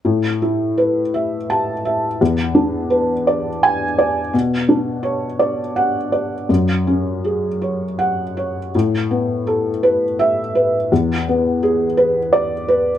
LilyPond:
\new Staff \with { instrumentName = "Felt piano" } { \time 6/8 \key a \major \tempo 4. = 56 << { r2 a''4 | r2 gis''4 | r2 fis''4 | r2 fis''4 |
r2 e''4 | r2 d''4 | } \\ { a,8 e'8 b'8 e''4 e''8 | e,8 d'8 b'8 d''4 d''8 | b,8 d'8 cis''8 d''4 d''8 | fis,8 cis'8 gis'8 cis''4 cis''8 |
a,8 b8 a'8 b'4 b'8 | e,8 b8 gis'8 b'4 b'8 | } >> }